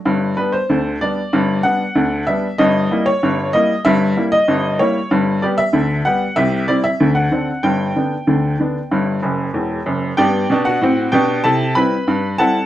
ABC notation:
X:1
M:2/4
L:1/16
Q:1/4=95
K:G
V:1 name="Upright piano"
z2 B c3 d2- | d2 f4 e2 | _e3 _d3 e2 | e3 _e3 _d2 |
z2 d e3 f2 | e2 d e2 f3 | g8- | g6 z2 |
[Gdg]3 [Ff]3 [Gg]2 | [Aa]2 [Bb]4 [Afa]2 |]
V:2 name="Upright piano" clef=bass
[G,,,G,,]2 [G,B,D]2 [D,,D,]2 [G,B,D]2 | [G,,,G,,]2 [G,B,D]2 [D,,D,]2 [G,B,D]2 | [G,,,G,,]2 [G,_B,E]2 [G,,,G,,]2 [G,B,E]2 | [G,,,G,,]2 [G,_B,E]2 [G,,,G,,]2 [G,B,E]2 |
[G,,,G,,]2 [G,B,G]2 [D,,D,]2 [G,B,G]2 | [C,,C,]2 [G,CE]2 [D,,D,]2 [D,CD]2 | [G,,,G,,]2 [D,B,D]2 [D,,D,]2 [D,B,D]2 | [G,,,G,,]2 [F,,,F,,]2 [E,,,E,,]2 [F,,,F,,]2 |
[G,,B,]2 [B,,D]2 [A,,C]2 [B,,D]2 | [C,E]2 [G,CE]2 G,,2 [G,CE]2 |]